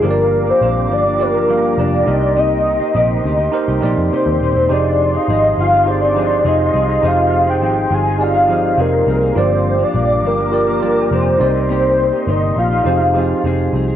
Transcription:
Already playing: F5
0.02 G1 G2 F3 A#3 D4 F4 G4 A#4 C5 D5 G5 D6
0.11 D5
0.46 F3 A#3 D4 C5 F5
0.61 A#1 G2 F3 A#3 D4
0.89 G1 G2 F3 A#3 D4 D5
1.04 F3 A#3 D4
1.19 F4 G4 A#4 D5
1.34 F3 A#3 D4
1.48 G2 F3 A#3 D4 F4 G4 A#4 F5
1.78 F1 G2 F3 A#3 D4 D5
2.06 C2 C3 A#3 D#4 G4 A#4 D#5 C6
2.21 A#3 D#4 G4
2.36 C3 A#3 D#4 G4 D#5
2.79 A#3 D#4 G4 C5
2.94 A#1 C3 A#3 D#4 G4
3.24 D2 C3 A#3 D#4 G4
3.39 A#3 D#4 G4
3.52 D#4 G4 A#4 C5
3.68 C2 A#3 D#4 G4
3.81 A#1 C3 A#3 D#4 G4 A#4 D5
3.85 G4
3.97 F2
4.12 C3 A#3 D#4 G4 C5
4.26 D#2
4.41 D#1 C3 A#3 D#4 G4
4.55 E1 A#3 D#4 G4
4.69 F1 F3 C4 D#4 F4 G4 G#4 C5 D5 D#5 F5
5.13 C4 D#4 G#4 D#5 F5
5.28 G#1 F3 C4 D#4 G#4
5.57 G1 F3 C4 D#4 G#4 F5
5.72 C4 D#4 G#4
5.85 D#4 G4 G#4 C5
5.90 D5
6.01 C4 D#4 G#4
6.14 F3 C4 D#4 G4 G#4 C5
6.19 G#4
6.44 F1 F3 C4 D#4 G#4 D#5
6.74 C2 F3 C4 D#4 G#4 D#5
6.88 C4 D#4 G#4
7.02 F1 F3 C4 D#4 G4 G#4 C5 D#5
7.07 F5
7.47 C4 D#4 G#4 C5 G5
7.61 G#1 F3 C4 D#4 G#4
7.90 G1 F3 C4 D#4 G#4 G#5
8.05 C4 D#4 G#4
8.18 D#4 G4 G#4 D5
8.23 F5
8.34 C4 D#4 G#4
8.48 F3 C4 D#4 G4 G#4 C5
8.77 F1 F3 C4 D#4 G#4 A#4
9.06 C2 F3 C4 D#4 G#4
9.21 C4 D#4 G#4
9.35 G1 G2 F3 A#3 D4 F4 G4 A#4 C5 D5 G5 D6
9.79 F3 A#3 D4 F5
9.83 D5
9.93 A#1 G2 F3 A#3 D4
10.22 G1 G2 F3 A#3 D4
10.27 A#4
10.38 F3 A#3 D4
10.51 F4 G4 A#4 D5
10.67 F3 A#3 D4
10.80 G2 F3 A#3 F4 G4 A#4 D5
10.84 D4
11.11 F1 G2 F3 A#3 D4 C5
11.38 C2 C3 A#3 D#4 G4 A#4 D5 D#5 C6
11.43 G4
11.54 A#3 D#4 G4
11.69 C3 A#3 D#4 G4 C5
12.12 A#3 D#4 G4 A#4
12.27 G1 C3 A#3 D#4 G4 D#5
12.56 A#1 C3 A#3 D#4 G4 F5
12.71 A#3 D#4 G4
12.84 F1 F3 C4 D#4 F4 G4 G#4 C5 F5
12.88 G#4
13.00 C4 D#4 G#4
13.13 F3 C4 D#4 G4 G#4 C5
13.17 D#4 G#4
13.44 F1 F3 C4 D#4 G#4
13.73 C2 F3 C4 D#4 G#4
13.88 C4 D#4 G#4

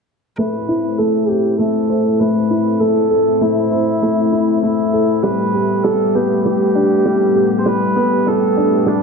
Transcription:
0.37 A2 A3 C4 E4 B4
0.69 E4
0.98 A3 A4
1.29 G4 A4
1.59 A3 A4
1.90 C5
2.19 A3 B4
2.51 E4
2.80 A3 A4
3.11 A4
3.41 A3 E4
3.72 C5
4.02 A3
4.33 E4
4.63 A3 E4
4.93 A4
5.23 A2 G3 B3 G4 B4
5.54 G4
5.83 G3 A4
6.15 B3 G4
6.44 G3 G4
6.75 D4
7.06 G3
7.36 G4
7.59 C5
7.66 G3 B4
7.96 B3
8.27 G3 A4
8.57 D4
8.87 G3 D4

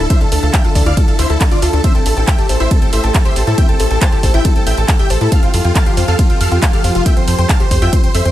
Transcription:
Already playing: D3 D4 E4 F4
0.10 D4 C5 E5 E6, kick, closed hi-hat, ride
0.21 A4 F5 A5, closed hi-hat
0.32 D2 A4 A5, open hi-hat
0.43 D2 A4 F5 A5, closed hi-hat
0.54 E5 F5 G5 G6, kick, clap, closed hi-hat, ride
0.64 F4 A4 A5, closed hi-hat
0.75 D2 A4 D5 A5, kick, open hi-hat
0.86 D2 E4 D5 F5 F6, closed hi-hat
0.97 D4 A4 A5, kick, closed hi-hat, ride
1.08 A4 F5 A5, closed hi-hat
1.19 D2 E4 C5 E5 E6, open hi-hat
1.30 D2 E4 A4 A5, closed hi-hat
1.41 D4 A4 A5, kick, clap, closed hi-hat, ride
1.51 F4 D5 D6, closed hi-hat
1.62 D2 F4 A4 A5, open hi-hat
1.73 D2 D4 A4 A5, closed hi-hat
1.84 A3 C4 G4 C5 E5 E6, kick, closed hi-hat, ride
1.95 A4 G5 A5, closed hi-hat
2.06 A1 A4 A5, open hi-hat
2.17 A1 A4 G5 A5, closed hi-hat
2.27 E5 G5 G6, kick, clap, closed hi-hat, ride
2.38 G4 A4 A5, closed hi-hat
2.49 A1 A4 C5 A5, open hi-hat
2.60 A1 E4 C5 E5 E6, closed hi-hat
2.71 C4 A4 A5, kick, closed hi-hat, ride
2.82 A4 G5 A5, closed hi-hat
2.93 A1 A4 C5 E5 E6, open hi-hat
3.04 A1 A4 G5 A5, closed hi-hat
3.14 A4 G5 A5, kick, clap, closed hi-hat, ride
3.25 G4 C5 E5 E6, closed hi-hat
3.36 A1 A4 C5 A5, open hi-hat
3.47 A2 E4 A4 A5, closed hi-hat
3.58 C4 E5 G5 G6, kick, closed hi-hat, ride
3.69 A4 G5 A5, closed hi-hat
3.80 A1 A4 A5, open hi-hat
3.91 A1 A4 G5 A5, closed hi-hat
4.01 C5 G5 A5 A6, kick, clap, closed hi-hat, ride
4.12 G4 A4 A5, closed hi-hat
4.23 A1 A4 C5 A5, kick, open hi-hat
4.34 A1 E4 E5 G5 G6, closed hi-hat
4.45 C4 A4 A5, kick, closed hi-hat, ride
4.56 A4 G5 A5, closed hi-hat
4.67 A1 A4 E5 G5 G6, open hi-hat
4.78 A1 A4 G5 A5, closed hi-hat
4.88 G5, kick, clap, closed hi-hat, ride
4.99 G4 E5 G5 G6, closed hi-hat
5.10 A1 A4 C5 A5, open hi-hat
5.21 A2 E4 A4 A5, closed hi-hat
5.32 F3 C4 F4 G4 A4 F5 F6, kick, closed hi-hat, ride
5.43 F4 F5 G5, closed hi-hat
5.54 F2 F4 A4 F5, open hi-hat
5.65 F2 F4 F5 G5, closed hi-hat
5.75 F5 G5 A5 A6, kick, clap, closed hi-hat, ride
5.86 F4 G4 F5, closed hi-hat
5.97 F2 F4 C5 F5, open hi-hat
6.08 F2 F4 A4 F5 F6, closed hi-hat
6.19 C4 F4 F5, kick, closed hi-hat, ride
6.30 F4 F5 G5, closed hi-hat
6.41 F2 A4 F5 F6, open hi-hat
6.51 F2 F4 F5 G5, closed hi-hat
6.62 F4 F5 G5, kick, clap, closed hi-hat, ride
6.73 G4 A4 F5 F6, closed hi-hat
6.84 F2 F4 C5 F5, open hi-hat
6.95 F1 F4 F5, closed hi-hat
7.06 C4 E5 G5 G6, kick, closed hi-hat, ride
7.17 C5 G5 C6, closed hi-hat
7.28 F2 A4 C5 C6, open hi-hat
7.38 F2 C5 G5 C6, closed hi-hat
7.49 F5 G5 A5 A6, kick, clap, closed hi-hat, ride
7.60 G4 C5 C6, closed hi-hat
7.71 F2 C5 C6, kick, open hi-hat
7.82 F2 F4 E5 G5 G6, closed hi-hat
7.93 C4 C5 C6, kick, closed hi-hat, ride
8.04 C5 G5 C6, closed hi-hat
8.14 F2 A4 C5 E5 E6, open hi-hat
8.25 F2 C5 G5 C6, closed hi-hat

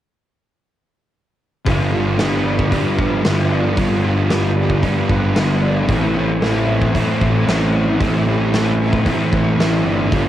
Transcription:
1.66 G1 G2 D3 F3 G3 B3 F4, kick, open hi-hat
1.92 D3 F3 G3 B3 F4
2.18 G2 D3 F3 G3 B3 F4 G4, snare, open hi-hat
2.46 D5
2.59 kick
2.71 G2 D3 F3 G3 B3 F4, kick, open hi-hat
2.98 G1 B4, kick
3.22 G1 G2 D3 F3 G3 B3 E5, snare, open hi-hat
3.26 F4
3.51 D5
3.77 G1 G2 D3 F3 G3 B3 F4, kick, open hi-hat
4.02 D3 F3 G3 B3 F4
4.29 G2 D3 F3 G3 B3 F4 G4, snare, open hi-hat
4.57 D5
4.70 kick
4.82 G2 D3 F3 G3 B3 F4, kick, open hi-hat
5.09 G1 B4, kick
5.35 G1 G2 D3 F3 G3 B3 F4 E5, snare, open hi-hat
5.62 D5
5.88 A1 A2 E3 A3 C4 E4, kick, open hi-hat
6.15 E3 A3 C4 E4 G4
6.41 A2 E3 A3 C4 E4 A4, snare, open hi-hat
6.67 E5
6.81 kick
6.94 A2 E3 A3 C4 E4, kick, open hi-hat
7.20 A1 C5, kick
7.46 A1 A2 E3 A3 C4 E4 E5, snare, open hi-hat
7.73 D5
8.00 A1 A2 E3 A3 C4 E4, kick, open hi-hat
8.26 E3 A3 C4 E4 G4
8.53 A2 E3 A3 C4 E4 A4, snare, open hi-hat
8.80 E5
8.93 kick
9.05 A2 E3 A3 C4 E4, kick, open hi-hat
9.33 A1 C5, kick
9.58 A1 A2 E3 A3 C4 E4 E5, snare, open hi-hat
9.85 G1 D5
10.12 G1 G2 D3 F3 G3 B3 F4, kick, open hi-hat

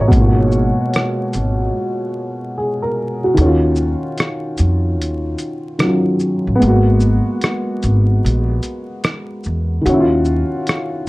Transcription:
Already playing: F#4 G#4 A#4 D#5
0.00 A1 C#5
0.08 B2
0.12 G#1 G#3, kick, closed hi-hat
0.16 A#3
0.20 F4
0.26 F#4
0.52 shaker
0.94 cross-stick, closed hi-hat
1.33 G#1, closed hi-hat, shaker
2.58 G#4
2.82 A#4
3.24 F#4
3.34 D#2 D#3 F#4, closed hi-hat
3.41 C#4
3.46 F4
3.76 shaker
4.18 cross-stick, closed hi-hat
4.58 F2, closed hi-hat, shaker
5.00 D#2, closed hi-hat
5.39 closed hi-hat, shaker
5.78 D#3 F#3, cross-stick, closed hi-hat
5.82 C#4 F4
6.20 shaker
6.47 A1
6.56 B3
6.60 G#1 G#3 A#3, closed hi-hat
6.68 F#4
7.00 shaker
7.41 cross-stick, closed hi-hat
7.83 G#1, closed hi-hat, shaker
8.24 A#1, closed hi-hat
8.63 closed hi-hat, shaker
9.04 cross-stick, closed hi-hat
9.44 E2, shaker
9.81 D#3
9.86 D#2 C#4 F#4, closed hi-hat
9.94 E4
10.00 F4
10.25 shaker
10.67 cross-stick, closed hi-hat

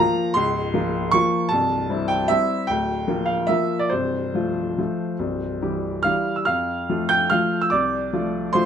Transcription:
Already playing: F3 A#5
0.00 A#3 F4
0.34 C#1 C#2 C6
0.74 F3 A#3 F4
1.11 F3 A#3 F4 C#6
1.49 C1 C2 A5
1.90 G3 C4 E4
2.08 G5
2.28 G3 C4 E4 E5
2.67 D1 D2 G5
3.08 F3 A#3 F4
3.26 F5
3.47 F3 A#3 F4 E5
3.79 D5
3.90 C1 C2 C5
4.35 F3 A3 F4
4.78 F3 A3 F4
5.19 C1 C2
5.62 E3 G3 G4
6.03 E3 G3 G4 F5 F6
6.36 E6
6.45 F2 F5 F6
6.89 F3 A3 F4
7.09 G5 G6
7.30 F3 A3 F4 F5 F6
7.61 E6
7.70 C2 D5 D6
8.13 F3 A3 F4
8.53 F3 A3 F4 C5 C6

